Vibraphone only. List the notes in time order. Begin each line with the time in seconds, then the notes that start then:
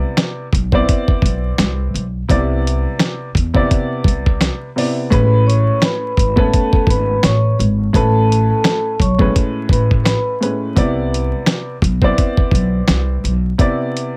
5.11 B4 B5
5.47 C#5 C#6
5.84 B4 B5
6.38 A4 A5
6.89 B4 B5
7.24 C#5 C#6
7.94 A4 A5
8.50 A4 A5
9.00 C#5 C#6
9.71 B4 B5
10.04 B4 B5